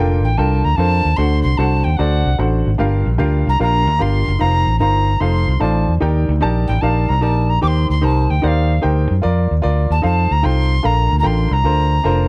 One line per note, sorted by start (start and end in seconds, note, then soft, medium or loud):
0.00 0.24 F1 medium
0.00 0.20 A#2 medium
0.00 0.26 D4 medium
0.00 0.26 F4 medium
0.00 0.27 A4 medium
0.00 0.27 A#4 medium
0.00 0.27 G5 loud
0.24 0.36 A1 loud
0.24 0.39 G5 medium
0.37 0.61 C2 medium
0.37 0.67 D4 medium
0.37 0.67 F4 medium
0.37 0.67 A4 medium
0.37 0.67 A#4 medium
0.37 0.68 G5 medium
0.37 0.66 A5 loud
0.65 0.77 D2 loud
0.65 0.78 A#5 loud
0.76 1.01 F2 loud
0.76 1.07 D4 medium
0.76 1.07 F4 medium
0.76 1.08 A4 medium
0.76 1.08 A#4 medium
0.76 1.08 C5 medium
0.76 1.18 A5 loud
1.05 1.17 D#2 medium
1.17 1.41 D2 loud
1.17 1.81 D3 medium
1.17 1.47 D4 medium
1.17 1.48 F#4 medium
1.17 1.48 A4 medium
1.17 1.48 C5 medium
1.17 1.48 F#5 medium
1.17 1.42 C6 loud
1.43 1.57 C2 medium
1.43 1.59 C6 loud
1.58 1.81 C2 medium
1.58 1.88 D4 medium
1.58 1.88 F#4 medium
1.58 1.88 A4 medium
1.58 1.88 C5 medium
1.58 1.89 F#5 medium
1.58 1.86 A5 loud
1.84 1.97 D#2 loud
1.84 1.98 G5 medium
1.97 2.22 D2 loud
1.97 2.28 D4 medium
1.97 2.28 F#4 medium
1.97 2.28 A4 medium
1.97 2.29 C5 medium
1.97 2.29 D5 medium
1.97 2.38 F#5 medium
2.26 2.38 C2 medium
2.38 2.62 A1 medium
2.38 2.68 D4 medium
2.38 2.68 F#4 medium
2.38 2.69 A4 medium
2.38 2.69 C5 medium
2.38 2.69 F#5 medium
2.67 2.78 G#1 medium
2.78 3.02 G1 loud
2.78 3.42 G2 medium
2.78 3.08 D4 medium
2.78 3.08 F4 medium
2.78 3.09 G4 medium
2.78 3.09 A#4 medium
2.78 3.09 F5 loud
3.06 3.18 A#1 medium
3.18 3.42 D2 medium
3.18 3.48 D4 medium
3.18 3.49 F4 medium
3.18 3.48 G4 medium
3.18 3.49 A#4 medium
3.18 3.49 F5 loud
3.47 3.59 C2 loud
3.47 3.61 A#5 loud
3.60 3.87 A#1 loud
3.60 3.89 D4 medium
3.60 3.89 F4 medium
3.60 3.90 G4 medium
3.60 3.90 A#4 medium
3.60 3.90 F5 medium
3.60 4.03 A#5 loud
3.87 3.99 D2 loud
3.99 4.23 G1 loud
3.99 4.29 D4 medium
3.99 4.29 F4 medium
3.99 4.29 G4 medium
3.99 4.29 A#4 medium
3.99 4.30 F5 medium
3.99 4.42 C6 loud
4.28 4.39 F#1 medium
4.39 4.64 F1 loud
4.39 4.69 D#4 medium
4.39 4.69 F4 medium
4.39 4.70 A#4 medium
4.39 4.70 C5 medium
4.39 4.70 F5 medium
4.39 4.79 A#5 loud
4.67 4.79 A1 medium
4.79 5.15 G1 medium
4.79 5.10 D#4 medium
4.79 5.10 F4 medium
4.79 5.10 A#4 medium
4.79 5.10 C5 medium
4.79 5.11 F5 medium
4.79 5.22 A#5 loud
5.20 5.44 F1 loud
5.20 5.50 D#4 medium
5.20 5.51 F4 medium
5.20 5.51 A4 medium
5.20 5.50 C5 medium
5.20 5.51 F5 medium
5.20 5.62 C6 loud
5.48 5.60 C2 medium
5.60 5.84 A1 loud
5.60 5.90 D#4 medium
5.60 5.90 F4 medium
5.60 5.90 A4 medium
5.60 5.91 C5 medium
5.60 5.91 D5 medium
5.60 5.95 A5 medium
5.88 6.00 E2 medium
6.00 6.25 D#2 loud
6.00 6.64 D#3 medium
6.00 6.30 D#4 medium
6.00 6.30 G4 medium
6.00 6.31 A#4 medium
6.00 6.31 D5 medium
6.00 6.31 G5 medium
6.29 6.40 D2 medium
6.41 6.66 A#1 loud
6.41 6.71 D#4 loud
6.41 6.71 G4 medium
6.41 6.71 A#4 medium
6.41 6.71 D5 medium
6.41 6.72 A5 loud
6.67 6.81 A1 loud
6.67 6.83 G5 medium
6.81 7.05 A#1 medium
6.81 7.11 D#4 medium
6.81 7.12 G4 medium
6.81 7.12 A#4 medium
6.81 7.12 D5 medium
6.81 7.12 F5 medium
6.81 7.10 A5 medium
7.09 7.23 C2 medium
7.09 7.24 A#5 medium
7.21 7.57 A#1 loud
7.21 7.51 D#4 medium
7.21 7.51 G4 medium
7.21 7.51 A#4 medium
7.21 7.52 D5 medium
7.21 7.51 A5 loud
7.21 7.52 A#5 medium
7.50 7.62 A#5 loud
7.61 7.86 D#2 loud
7.61 8.25 D#3 medium
7.61 7.91 D#4 medium
7.61 7.91 G4 medium
7.61 7.92 A#4 medium
7.61 7.92 C5 medium
7.61 7.92 G5 medium
7.61 7.69 D6 loud
7.68 7.87 C6 loud
7.90 8.01 D2 medium
7.90 8.06 C6 loud
8.01 8.26 C2 loud
8.01 8.31 D#4 medium
8.01 8.32 G4 medium
8.01 8.32 A#4 medium
8.01 8.32 C5 medium
8.01 8.32 A5 loud
8.01 8.32 A#5 medium
8.30 8.42 D2 loud
8.30 8.45 G5 medium
8.42 8.78 D#2 loud
8.42 8.72 D#4 medium
8.42 8.72 G4 medium
8.42 8.72 A#4 medium
8.42 8.72 C5 medium
8.42 8.73 D5 medium
8.42 8.48 F#5 medium
8.47 8.84 F5 medium
8.82 9.07 D2 medium
8.82 9.12 D#4 medium
8.82 9.12 G4 medium
8.82 9.12 A#4 medium
8.82 9.12 C5 medium
8.82 9.12 G5 medium
9.11 9.22 F#2 medium
9.22 9.47 F2 loud
9.22 9.52 F4 medium
9.22 9.52 A#4 medium
9.22 9.53 D5 loud
9.51 9.62 D#2 medium
9.62 9.87 D2 medium
9.62 9.92 F4 medium
9.62 9.92 A#4 medium
9.62 9.93 D5 loud
9.90 10.02 D#2 loud
9.90 10.04 A5 medium
10.02 10.27 F2 loud
10.02 10.32 D#4 medium
10.02 10.33 F4 medium
10.02 10.33 A4 medium
10.02 10.33 C5 medium
10.02 10.33 F5 medium
10.02 10.34 A5 loud
10.31 10.43 D2 medium
10.31 10.47 A#5 loud
10.43 10.79 C2 loud
10.43 10.73 D#4 medium
10.43 10.73 F4 medium
10.43 10.73 A4 medium
10.43 10.73 C5 medium
10.43 10.73 G5 medium
10.43 10.87 C6 loud
10.83 11.07 A#1 loud
10.83 11.47 A#2 medium
10.83 11.13 D4 medium
10.83 11.13 F4 medium
10.83 11.13 A4 medium
10.83 11.13 A#4 medium
10.83 11.13 F5 medium
10.83 11.18 A#5 loud
11.12 11.23 D2 loud
11.19 11.53 D4 medium
11.19 11.53 F4 medium
11.19 11.53 A4 medium
11.19 11.28 A#5 loud
11.23 11.47 A1 loud
11.23 11.53 A#4 medium
11.23 11.54 G5 medium
11.23 11.54 C6 loud
11.51 11.63 C2 medium
11.51 12.28 A#5 loud
11.64 11.98 D2 medium
11.64 11.94 D4 medium
11.64 11.94 F4 medium
11.64 11.94 A4 medium
11.64 11.94 A#4 medium
11.64 11.94 C5 medium
12.04 12.28 F1 loud
12.04 12.28 D4 medium
12.04 12.28 F4 medium
12.04 12.28 A4 medium
12.04 12.28 A#4 medium
12.04 12.28 C5 loud